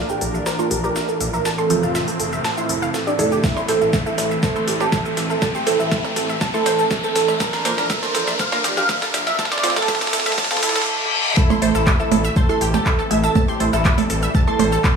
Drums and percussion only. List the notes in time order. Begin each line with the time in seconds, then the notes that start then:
0.09 shaker
0.21 open hi-hat, shaker
0.34 shaker
0.46 snare, shaker
0.59 shaker
0.71 open hi-hat, shaker
0.84 shaker
0.96 snare, shaker
1.09 shaker
1.21 open hi-hat, shaker
1.33 shaker
1.45 snare, shaker
1.58 shaker
1.70 open hi-hat, shaker
1.83 shaker
1.95 snare, shaker
2.08 open hi-hat, shaker
2.20 open hi-hat, shaker
2.33 shaker
2.44 snare, shaker
2.57 shaker
2.69 open hi-hat, shaker
2.82 shaker
2.94 snare, shaker
3.07 shaker
3.19 open hi-hat, shaker
3.32 shaker
3.44 kick, snare, shaker
3.57 percussion blips, shaker
3.68 snare, open hi-hat, shaker
3.81 shaker
3.93 kick, snare, shaker
4.06 shaker
4.18 snare, open hi-hat, percussion blips, shaker
4.31 shaker
4.43 kick, snare, shaker
4.56 shaker
4.68 snare, open hi-hat, shaker
4.80 percussion blips, shaker
4.92 kick, snare, shaker
5.05 shaker
5.17 snare, open hi-hat, shaker
5.30 shaker
5.42 kick, snare, percussion blips, shaker
5.55 shaker
5.67 snare, open hi-hat, shaker
5.80 shaker
5.92 kick, snare, shaker
6.04 percussion blips, shaker
6.16 snare, open hi-hat, shaker
6.29 shaker
6.41 kick, snare, shaker
6.54 shaker
6.66 snare, open hi-hat, percussion blips, shaker
6.79 shaker
6.91 kick, snare, shaker
7.04 shaker
7.16 snare, open hi-hat, shaker
7.28 percussion blips, shaker
7.40 kick, snare, shaker
7.53 snare, shaker
7.65 snare, open hi-hat, shaker
7.78 snare, shaker
7.90 kick, snare, percussion blips, shaker
8.03 snare, shaker
8.15 snare, open hi-hat, shaker
8.27 snare, shaker
8.39 kick, snare, shaker
8.52 snare, percussion blips, shaker
8.64 snare, open hi-hat, shaker
8.77 snare, shaker
8.89 kick, snare, shaker
9.02 snare, shaker
9.14 snare, open hi-hat, percussion blips, shaker
9.27 snare, shaker
9.39 kick, snare, shaker
9.45 snare
9.52 snare, shaker
9.58 snare
9.64 snare, open hi-hat, shaker
9.70 snare
9.76 snare, percussion blips, shaker
9.82 snare
9.88 kick, snare, shaker
9.95 snare
10.01 snare, shaker
10.07 snare
10.13 snare, open hi-hat, shaker
10.20 snare
10.26 snare, shaker
10.32 snare
10.38 kick, snare, percussion blips, shaker
10.44 snare
10.51 snare, shaker
10.57 snare
10.63 snare, open hi-hat, shaker
10.69 snare
10.76 snare, shaker
10.81 snare
11.37 kick, shaker
11.50 percussion blips, shaker
11.62 open hi-hat
11.75 shaker
11.87 kick, cross-stick, clap, shaker
12.00 shaker
12.12 open hi-hat, percussion blips
12.24 shaker
12.36 kick, shaker
12.49 cross-stick, shaker
12.61 open hi-hat
12.74 percussion blips, shaker
12.86 kick, clap, shaker
12.99 shaker
13.11 cross-stick, open hi-hat
13.24 shaker
13.35 kick, percussion blips, shaker
13.48 shaker
13.60 open hi-hat
13.73 cross-stick, shaker
13.85 kick, clap, shaker
13.98 open hi-hat, percussion blips, shaker
14.10 open hi-hat
14.23 shaker
14.35 kick, cross-stick, shaker
14.47 shaker
14.59 open hi-hat, percussion blips
14.72 shaker
14.84 kick, clap, shaker